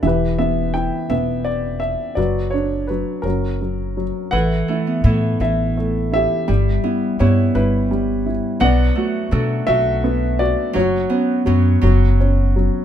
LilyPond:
<<
  \new Staff \with { instrumentName = "Upright piano" } { \time 6/8 \key b \minor \tempo 4. = 56 << { e''8 e''8 g''8 e''8 d''8 e''8 | d''8 cis''8 b'8 ais'4 r8 | fis''4 r8 e''4 e''8~ | e''4 cis''8 b'4 r8 |
fis''4. e''4 d''8 | cis''2 r4 | } \\ { <g' b'>4. r4. | <fis' b'>4. <cis' fis'>4. | b'4. r4 g'8~ | g'4 r2 |
d''4. r4. | fis'2 r4 | } >> }
  \new Staff \with { instrumentName = "Upright piano" } { \time 6/8 \key b \minor e8 b8 e'8 b4. | fis8 d'8 fis8 fis8 fis8 fis8 | a8 e'8 a8 e'8 a8 e'8 | g8 e'8 g8 e'8 g8 e'8 |
b8 fis'8 a'8 fis'8 b8 fis'8 | fis8 cis'8 fis8 fis8 cis'8 fis8 | }
  \new Staff \with { instrumentName = "Harp" } { \time 6/8 \key b \minor r2. | r2. | e8 a16 b16 <e b e'>8 e4. | g8 b8 <g b e'>8 g4. |
fis8 a8 <fis a d'>8 fis4. | fis8 b8 <fis b cis'>8 fis4. | }
  \new Staff \with { instrumentName = "Upright bass" } { \clef bass \time 6/8 \key b \minor e,,4. e,,4. | fis,,4. fis,,4. | a,,8 r8 a,8 a,,4. | g,,8 r8 g,8 g,,4. |
b,,8 r8 b,8 b,,4. | fis,,8 r8 fis,8 fis,,4. | }
>>